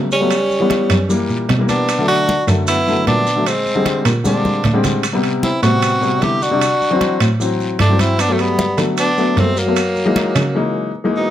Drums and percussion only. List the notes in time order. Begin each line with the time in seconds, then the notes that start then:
0.11 high conga, short guiro, maracas
0.31 high conga, high timbale, long guiro, maracas
0.51 high conga, maracas
0.70 high conga, high timbale, short guiro, maracas
0.90 high timbale, short guiro, maracas
1.10 high conga, long guiro, maracas
1.30 high conga, maracas
1.49 high conga, high timbale, low timbale, short guiro, maracas
1.69 high conga, high timbale, short guiro, maracas
1.89 high conga, high timbale, long guiro, maracas
2.08 high conga, high timbale, maracas
2.28 high conga, short guiro, maracas
2.48 high conga, high timbale, short guiro, maracas
2.67 high conga, high timbale, long guiro, maracas
2.88 high conga, maracas
3.07 high conga, high timbale, short guiro, maracas
3.27 high conga, short guiro, maracas
3.46 high conga, high timbale, long guiro, maracas
3.66 high conga, maracas
3.86 high conga, high timbale, short guiro, maracas
4.05 high timbale, short guiro, maracas
4.25 high conga, long guiro, maracas
4.45 high conga, maracas
4.64 low conga, high timbale, short guiro, maracas
4.84 low conga, high timbale, short guiro, maracas
5.03 high conga, high timbale, long guiro, maracas
5.24 high conga, high timbale, maracas
5.43 high conga, short guiro, maracas
5.63 high conga, high timbale, short guiro, maracas
5.82 high conga, high timbale, long guiro, maracas
6.02 high conga, maracas
6.22 high conga, high timbale, short guiro, maracas
6.42 high conga, short guiro, maracas
6.61 high conga, high timbale, long guiro, maracas
6.82 high conga, maracas
7.01 high conga, high timbale, short guiro, maracas
7.20 high timbale, short guiro, maracas
7.40 high conga, long guiro, maracas
7.60 high conga, maracas
7.79 high conga, high timbale, short guiro, maracas
7.99 high conga, high timbale, short guiro, maracas
8.19 high conga, high timbale, long guiro, maracas
8.39 high conga, high timbale, maracas
8.59 high conga, short guiro, maracas
8.78 high conga, high timbale, short guiro, maracas
8.97 high conga, high timbale, long guiro, maracas
9.18 high conga, maracas
9.37 high conga, high timbale, low timbale, short guiro, maracas
9.57 high conga, short guiro, maracas
9.76 high conga, high timbale, long guiro, maracas
9.96 high conga, maracas
10.16 high conga, high timbale, short guiro, maracas
10.36 high timbale, short guiro, maracas